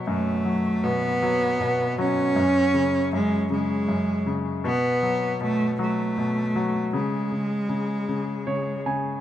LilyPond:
<<
  \new Staff \with { instrumentName = "Cello" } { \time 6/8 \key b \mixolydian \tempo 4. = 52 a4 b4. cis'8~ | cis'4 gis8 gis4 r8 | b4 a8 a4. | gis2~ gis8 r8 | }
  \new Staff \with { instrumentName = "Grand piano" } { \clef bass \time 6/8 \key b \mixolydian <fis, b, fis>8 fis8 b,8 fis8 b,8 fis8 | fis,8 cis8 fis,8 cis8 fis,8 cis8 | b,8 fis8 b,8 fis8 b,8 fis8 | cis8 cis8 cis8 cis8 <cis cis''>8 <cis gis''>8 | }
>>